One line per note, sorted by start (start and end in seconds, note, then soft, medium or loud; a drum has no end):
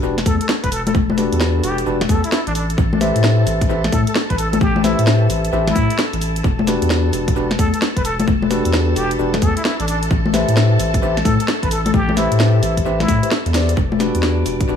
0.00 0.24 E1 medium
0.00 0.16 D4 medium
0.00 0.16 F#4 medium
0.00 0.16 G4 medium
0.00 6.43 A4 medium
0.00 0.16 B4 medium
0.00 6.43 A5 medium
0.00 shaker soft
0.18 snare medium
0.18 closed hi-hat soft
0.26 0.38 E2 loud
0.26 0.35 A4 medium
0.26 kick loud
0.26 open hi-hat loud
0.26 high conga medium
0.26 shaker medium
0.41 0.46 A4 medium
0.41 closed hi-hat medium
0.41 shaker soft
0.49 snare loud
0.49 shaker soft
0.64 0.93 E1 medium
0.64 0.70 B4 medium
0.64 kick medium
0.64 closed hi-hat medium
0.72 0.81 A4 medium
0.72 open hi-hat medium
0.72 shaker medium
0.86 0.92 A4 medium
0.86 closed hi-hat medium
0.86 high conga medium
0.86 shaker soft
0.95 1.29 E1 loud
0.95 kick loud
0.95 shaker soft
1.10 high conga medium
1.18 1.84 D4 loud
1.18 1.84 F#4 medium
1.18 1.84 G4 medium
1.18 1.84 B4 loud
1.18 snare medium
1.18 open hi-hat loud
1.18 shaker medium
1.32 1.61 E2 loud
1.32 closed hi-hat medium
1.32 shaker soft
1.41 snare loud
1.41 shaker soft
1.63 1.84 E1 medium
1.63 1.78 G4 medium
1.63 open hi-hat medium
1.63 shaker medium
1.78 closed hi-hat medium
1.78 shaker soft
1.86 2.07 E1 medium
1.86 1.99 D4 medium
1.86 1.99 F#4 medium
1.86 1.99 G4 medium
1.86 1.99 B4 medium
1.86 shaker soft
2.01 snare medium
2.01 closed hi-hat soft
2.01 high conga medium
2.09 2.22 E2 loud
2.09 2.21 A4 medium
2.09 kick loud
2.09 open hi-hat loud
2.09 shaker medium
2.24 2.29 E4 medium
2.24 closed hi-hat medium
2.24 shaker soft
2.32 2.42 E4 medium
2.32 snare loud
2.32 shaker soft
2.47 2.76 A1 medium
2.47 2.52 D4 medium
2.47 closed hi-hat medium
2.55 2.65 D4 medium
2.55 open hi-hat medium
2.55 shaker medium
2.70 closed hi-hat medium
2.70 shaker soft
2.78 3.12 A1 loud
2.78 kick loud
2.78 shaker soft
2.93 high conga medium
3.01 3.68 G4 loud
3.01 3.68 B4 medium
3.01 3.68 C5 medium
3.01 3.68 E5 loud
3.01 snare medium
3.01 open hi-hat loud
3.01 shaker medium
3.16 3.45 A2 loud
3.16 closed hi-hat medium
3.16 shaker soft
3.24 snare loud
3.24 shaker soft
3.47 3.67 A1 medium
3.47 open hi-hat medium
3.47 shaker medium
3.61 kick loud
3.61 closed hi-hat medium
3.61 shaker soft
3.70 3.90 A1 medium
3.70 3.82 G4 medium
3.70 3.82 B4 medium
3.70 3.82 C5 medium
3.70 3.82 E5 loud
3.70 shaker soft
3.84 snare medium
3.84 closed hi-hat soft
3.92 4.05 A2 loud
3.92 4.02 A4 medium
3.92 kick loud
3.92 open hi-hat loud
3.92 high conga medium
3.92 shaker medium
4.07 4.12 A4 medium
4.07 closed hi-hat medium
4.07 shaker soft
4.15 snare loud
4.15 shaker soft
4.30 4.59 A1 medium
4.30 4.37 B4 medium
4.30 kick medium
4.30 closed hi-hat soft
4.38 4.48 A4 medium
4.38 open hi-hat medium
4.38 shaker medium
4.53 4.58 A4 medium
4.53 closed hi-hat medium
4.53 high conga medium
4.53 shaker soft
4.61 4.95 A1 loud
4.61 4.82 G4 medium
4.61 kick loud
4.61 shaker soft
4.76 high conga medium
4.84 4.99 E4 medium
4.84 5.51 G4 medium
4.84 5.51 B4 medium
4.84 5.51 C5 medium
4.84 5.51 E5 loud
4.84 snare medium
4.84 open hi-hat loud
4.84 shaker medium
4.99 5.28 A2 medium
4.99 closed hi-hat medium
4.99 shaker soft
5.07 snare loud
5.07 shaker soft
5.30 5.50 A1 medium
5.30 open hi-hat medium
5.30 shaker medium
5.45 closed hi-hat medium
5.45 shaker soft
5.53 5.73 A1 loud
5.53 5.65 G4 medium
5.53 5.65 B4 medium
5.53 5.65 C5 medium
5.53 5.65 E5 medium
5.53 shaker soft
5.67 5.99 E4 medium
5.67 snare medium
5.67 closed hi-hat soft
5.67 high conga medium
5.76 5.88 A2 loud
5.76 kick loud
5.76 open hi-hat loud
5.76 shaker medium
5.90 closed hi-hat medium
5.90 shaker soft
5.99 snare loud
5.99 shaker soft
6.13 6.42 A1 medium
6.13 closed hi-hat medium
6.21 open hi-hat medium
6.21 shaker medium
6.36 closed hi-hat medium
6.36 shaker soft
6.44 6.78 E1 loud
6.44 13.78 A4 medium
6.44 13.78 A5 medium
6.44 kick loud
6.44 shaker soft
6.59 high conga medium
6.67 7.34 D4 loud
6.67 7.34 F#4 medium
6.67 7.34 G4 medium
6.67 7.34 B4 loud
6.67 snare medium
6.67 open hi-hat loud
6.67 shaker medium
6.82 7.11 E2 loud
6.82 closed hi-hat medium
6.82 shaker soft
6.90 snare loud
6.90 shaker soft
7.13 7.33 E1 medium
7.13 open hi-hat medium
7.13 shaker medium
7.28 kick loud
7.28 closed hi-hat medium
7.28 shaker soft
7.36 7.56 E1 loud
7.36 7.49 D4 medium
7.36 7.49 F#4 medium
7.36 7.49 G4 medium
7.36 7.49 B4 medium
7.36 shaker soft
7.51 snare medium
7.51 closed hi-hat soft
7.59 7.71 E2 loud
7.59 7.68 A4 medium
7.59 kick loud
7.59 open hi-hat loud
7.59 high conga medium
7.59 shaker medium
7.74 7.79 A4 medium
7.74 closed hi-hat medium
7.74 shaker soft
7.82 snare loud
7.82 shaker soft
7.96 8.26 E1 medium
7.96 8.03 B4 medium
7.96 kick medium
7.96 closed hi-hat medium
8.05 8.14 A4 medium
8.05 open hi-hat medium
8.05 shaker medium
8.19 8.25 A4 medium
8.19 closed hi-hat medium
8.19 high conga medium
8.19 shaker soft
8.28 8.62 E1 loud
8.28 kick loud
8.28 shaker soft
8.42 high conga medium
8.50 9.17 D4 loud
8.50 9.17 F#4 medium
8.50 9.17 G4 medium
8.50 9.17 B4 loud
8.50 snare medium
8.50 open hi-hat loud
8.50 shaker medium
8.65 8.94 E2 loud
8.65 closed hi-hat medium
8.65 shaker soft
8.73 snare loud
8.73 shaker soft
8.96 9.17 E1 medium
8.96 9.11 G4 medium
8.96 open hi-hat medium
8.96 shaker medium
9.11 closed hi-hat medium
9.11 shaker soft
9.19 9.40 E1 loud
9.19 9.32 D4 medium
9.19 9.32 F#4 medium
9.19 9.32 G4 medium
9.19 9.32 B4 medium
9.19 shaker soft
9.34 snare medium
9.34 closed hi-hat soft
9.34 high conga medium
9.42 9.55 E2 loud
9.42 9.54 A4 medium
9.42 kick loud
9.42 open hi-hat loud
9.42 shaker medium
9.57 9.62 E4 medium
9.57 closed hi-hat medium
9.57 shaker soft
9.65 9.74 E4 medium
9.65 snare loud
9.65 shaker soft
9.80 10.09 A1 medium
9.80 9.85 D4 medium
9.80 closed hi-hat medium
9.88 9.97 D4 medium
9.88 open hi-hat medium
9.88 shaker medium
10.03 closed hi-hat medium
10.03 shaker soft
10.11 10.45 A1 loud
10.11 kick loud
10.11 shaker soft
10.26 high conga medium
10.34 11.00 G4 loud
10.34 11.00 B4 medium
10.34 11.00 C5 medium
10.34 11.00 E5 loud
10.34 snare medium
10.34 open hi-hat loud
10.34 shaker medium
10.48 10.77 A2 loud
10.48 closed hi-hat medium
10.48 shaker soft
10.57 snare loud
10.57 shaker soft
10.79 11.00 A1 medium
10.79 open hi-hat loud
10.79 shaker medium
10.94 kick loud
10.94 closed hi-hat medium
10.94 shaker soft
11.02 11.23 A1 medium
11.02 11.15 G4 medium
11.02 11.15 B4 medium
11.02 11.15 C5 medium
11.02 11.15 E5 medium
11.02 shaker soft
11.17 snare medium
11.17 closed hi-hat soft
11.25 11.38 A2 loud
11.25 11.35 A4 medium
11.25 kick loud
11.25 open hi-hat loud
11.25 high conga medium
11.25 shaker medium
11.40 11.45 A4 medium
11.40 closed hi-hat medium
11.40 shaker soft
11.48 snare loud
11.48 shaker soft
11.63 11.92 A1 medium
11.63 11.69 B4 medium
11.63 kick medium
11.63 closed hi-hat medium
11.71 11.80 A4 medium
11.71 open hi-hat medium
11.71 shaker medium
11.86 11.91 A4 medium
11.86 closed hi-hat medium
11.86 high conga medium
11.86 shaker soft
11.94 12.28 A1 loud
11.94 12.15 G4 loud
11.94 kick loud
11.94 shaker soft
12.09 high conga medium
12.17 12.31 E4 medium
12.17 12.84 G4 loud
12.17 12.84 B4 medium
12.17 12.84 C5 medium
12.17 12.84 E5 loud
12.17 snare medium
12.17 open hi-hat loud
12.17 shaker medium
12.31 12.61 A2 loud
12.31 closed hi-hat medium
12.31 shaker soft
12.40 snare loud
12.40 shaker soft
12.63 12.83 A1 medium
12.63 open hi-hat loud
12.63 shaker medium
12.77 kick medium
12.77 closed hi-hat medium
12.77 shaker soft
12.86 13.06 A1 medium
12.86 12.98 G4 medium
12.86 12.98 B4 medium
12.86 12.98 C5 medium
12.86 12.98 E5 loud
12.86 shaker soft
13.00 13.31 E4 medium
13.00 snare medium
13.00 closed hi-hat soft
13.00 high conga medium
13.08 13.21 A2 loud
13.08 kick loud
13.08 open hi-hat loud
13.08 shaker medium
13.23 13.30 G4 medium
13.23 13.30 B4 medium
13.23 13.30 C5 medium
13.23 13.30 E5 medium
13.23 closed hi-hat medium
13.23 shaker soft
13.31 snare loud
13.31 shaker soft
13.46 13.75 E2 loud
13.46 closed hi-hat medium
13.54 13.72 G4 medium
13.54 13.72 B4 medium
13.54 13.72 C5 medium
13.54 13.72 D5 medium
13.54 snare medium
13.54 open hi-hat loud
13.54 shaker medium
13.69 closed hi-hat medium
13.69 shaker soft
13.77 14.11 E1 loud
13.77 14.76 D5 medium
13.77 14.76 D6 medium
13.77 kick loud
13.77 shaker soft
13.92 high conga medium
14.00 14.67 D4 loud
14.00 14.67 F#4 medium
14.00 14.67 G4 medium
14.00 14.67 B4 loud
14.00 snare medium
14.00 open hi-hat loud
14.00 shaker medium
14.15 14.44 E2 loud
14.15 closed hi-hat medium
14.15 shaker soft
14.23 snare loud
14.23 shaker soft
14.46 14.66 E1 medium
14.46 open hi-hat loud
14.46 shaker medium
14.61 kick loud
14.61 closed hi-hat medium
14.61 shaker soft
14.69 14.76 E1 medium
14.69 14.76 D4 medium
14.69 14.76 F#4 medium
14.69 14.76 G4 medium
14.69 14.76 B4 loud
14.69 shaker soft